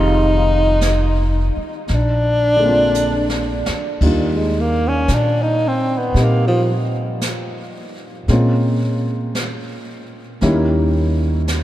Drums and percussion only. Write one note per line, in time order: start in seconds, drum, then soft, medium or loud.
0.81 brush sweep soft
0.81 snare soft
0.81 hi-hat pedal soft
1.88 brush sweep soft
1.88 snare soft
2.94 hi-hat pedal soft
3.29 snare soft
3.66 snare medium
4.01 brush sweep soft
4.01 kick soft
4.01 ride medium
5.08 brush sweep soft
5.08 snare soft
5.08 hi-hat pedal soft
6.15 brush sweep soft
6.15 snare soft
7.21 brush sweep soft
7.21 snare soft
7.21 hi-hat pedal medium
8.28 brush sweep soft
8.28 snare soft
9.35 brush sweep soft
9.35 snare soft
9.35 hi-hat pedal soft
10.41 brush sweep soft
10.41 snare soft
11.48 brush sweep soft
11.48 snare soft
11.48 hi-hat pedal soft